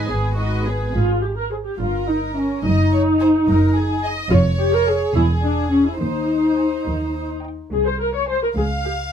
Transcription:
0.07 G#1 B3 G#4 B4
0.37 G#3 D#4 F#4 B4 D#5
0.66 B3 G#4 B4
0.95 G#1 G#2 F4
1.23 G4
1.37 A#4
1.51 G#4 C5
1.66 G4
1.79 G1 G2 F4 A#4
2.08 D#4
2.35 C#4 D#5
2.64 F#1 F#2 D#4 D#5
2.93 C#5
3.20 C5 G#5
3.48 F#1 F#2 A#4
3.76 G#4
4.03 D#5 G#5
4.31 F1 F2 F4 C#5
4.59 G4
4.74 A#4
4.87 G#4 G#5
5.15 E1 E2 E4 G#4
5.44 D4
5.72 C#4 G#5
5.87 E4
6.00 D#2 D#4 C5
6.58 G#5
6.86 D#2
7.44 G5
7.72 C2 G#4
7.87 C5
8.00 A#4
8.15 C#5
8.27 C5 G#5
8.43 A#4
8.56 C#2 G#4 F5
8.85 G4

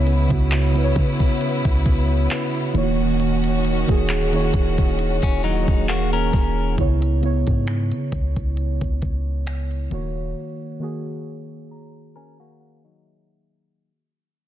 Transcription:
Already playing: C#2 C#3 B3 E4 C#5
0.07 closed hi-hat
0.29 C#2 C#3 B3 E4, kick, closed hi-hat
0.33 F#4
0.51 clap, closed hi-hat
0.73 C#3 B3 E4, closed hi-hat
0.77 B4
0.84 C#5
0.96 C#3, kick, closed hi-hat
1.20 kick, closed hi-hat
1.41 closed hi-hat
1.65 C#2, kick, closed hi-hat
1.86 kick, closed hi-hat
2.30 clap, closed hi-hat
2.55 closed hi-hat
2.73 D#1 D#3 A#3 C#4 E4 F#4, closed hi-hat
2.77 C#5
2.83 F#4
3.20 closed hi-hat
3.44 closed hi-hat
3.65 closed hi-hat
3.87 D#1 D#3 A#3 F#4, kick, closed hi-hat
3.91 G#4
4.09 clap, closed hi-hat
4.32 D#3 A#3 E4 C#5, closed hi-hat
4.41 F#4
4.54 D#1, kick, closed hi-hat
4.78 kick, closed hi-hat
4.99 closed hi-hat
5.23 D#1 C#4, kick, closed hi-hat
5.43 F#3 D#4, closed hi-hat
5.68 D#1, kick
5.88 A#3 F#4, clap, closed hi-hat
6.13 C#4 A#4, closed hi-hat
6.33 D#1, kick, open hi-hat
6.76 C#2 C#3 B3 E4, kick, closed hi-hat
6.81 C#5
7.02 closed hi-hat
7.21 C#3 B3 E4, closed hi-hat
7.25 C#5
7.47 G#2, kick, closed hi-hat
7.67 finger snap, closed hi-hat
7.92 C#3, closed hi-hat
8.12 C#2, kick, closed hi-hat
8.36 C#2, kick, closed hi-hat
8.57 closed hi-hat
8.81 C#2, kick, closed hi-hat
9.02 C#2, kick, closed hi-hat
9.47 finger snap, closed hi-hat
9.71 closed hi-hat
9.90 D#1 D#3 A#3 F#4, closed hi-hat
9.94 C#5
10.79 D#3 A#3 F#4 G#4
11.71 A#5
12.16 C#4 A#4 G#5
12.40 A#3 F#4
12.60 F#5
12.84 F#3 D#4
13.05 E5
13.50 D#5

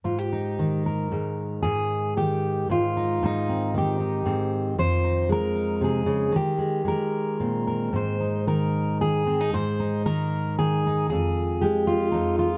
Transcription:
0.04 G#2 F4
0.18 G4
0.33 D#4
0.59 D#3
0.86 A#4
1.12 G#2
1.63 G#2 G#4
2.17 D#3 G4
2.69 G#2 F4
2.97 D#4
3.23 G#2 D#4
3.49 C4
3.74 D#3 G4
4.00 D#4
4.26 G#2 C4
4.78 F2 C5
5.04 D#4
5.29 G#3 A#4
5.55 D#4
5.81 C3 G#4
6.06 C#3
6.32 D#3
6.36 G4
6.58 G#3
6.85 G#3 A#4
7.40 A#2 C4
7.67 A#4
7.93 G#2 C5
8.21 D#4
8.47 D#3 A#4
9.01 D#3 G#4
9.27 C4
9.41 D#4
9.53 G#2 C5
9.80 D#4
10.06 D#3 A#4
10.59 D#3 G#4
10.86 D#4
11.10 F2 G#4
11.61 G#3 G4
11.87 F4
12.12 F2 D#4
12.39 F4

